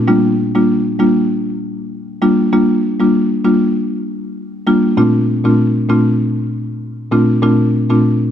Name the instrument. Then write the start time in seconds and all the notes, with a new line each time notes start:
marimba
0.08 G3 A#3 D4 F4
0.55 G3 A#3 D4 F4
0.99 G3 A#3 D4 F4
2.22 G3 A#3 D4 F4
2.52 G3 A#3 D4 F4
3.00 G3 A#3 D4 F4
3.44 G3 A#3 D4 F4
4.67 G3 A#3 D4 F4
4.97 A#2 A3 C4 D4 F4
5.45 A#2 A3 C4 D4 F4
5.89 A#2 A3 C4 D4 F4
7.12 A#2 A3 C4 D4 F4
7.42 A#2 A3 C4 D4 F4
7.90 A#2 A3 C4 D4 F4